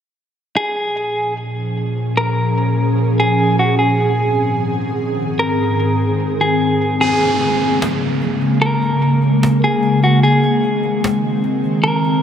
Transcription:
0.56 3.76 A#2 medium
0.56 3.76 F3 medium
0.56 3.76 C#4 medium
0.56 1.33 G#4 loud
0.56 6.97 G#4 medium
2.17 3.14 A#4 medium
3.20 3.57 G#4 medium
3.59 3.78 F#4 medium
3.79 6.98 G#2 medium
3.79 6.98 D#3 medium
3.79 6.98 C4 medium
3.79 4.55 G#4 medium
5.39 6.36 A#4 medium
6.41 6.98 G#4 medium
7.01 10.20 C#3 medium
7.01 12.22 G#3 medium
7.01 10.20 A#3 medium
7.01 7.78 G#4 loud
7.01 cajon slap soft
7.01 downlifter medium
7.22 cajon slap soft
7.41 cajon slap soft
7.61 cajon slap soft
7.82 cajon slap loud
8.22 cajon slap soft
8.42 cajon slap soft
8.62 9.59 A#4 loud
8.62 cajon slap soft
8.83 cajon slap soft
9.02 cajon slap soft
9.22 cajon slap soft
9.43 cajon slap loud
9.64 10.01 G#4 medium
9.83 cajon slap soft
10.03 10.22 F#4 medium
10.03 cajon slap soft
10.23 12.22 D#3 medium
10.23 12.22 C4 medium
10.23 11.00 G#4 medium
10.23 cajon slap soft
10.44 cajon slap soft
10.64 cajon slap soft
10.83 cajon slap soft
11.04 cajon slap loud
11.44 cajon slap soft
11.64 cajon slap soft
11.84 12.22 A#4 medium
11.84 cajon slap soft
12.05 cajon slap soft

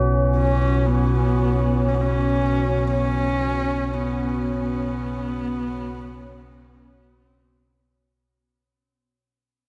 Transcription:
0.00 8.25 B1 medium
0.00 8.25 B2 medium
0.00 8.14 B3 medium
0.00 6.04 C#4 medium
0.00 8.14 C#4 medium
0.00 8.14 F#4 medium
0.00 8.13 C#5 medium
0.37 0.87 C#4 medium
0.86 1.90 B3 medium
1.88 1.96 C#4 medium
1.95 2.03 B3 medium
2.01 2.91 C#4 medium
2.91 3.95 C#4 loud
3.94 7.09 B3 medium

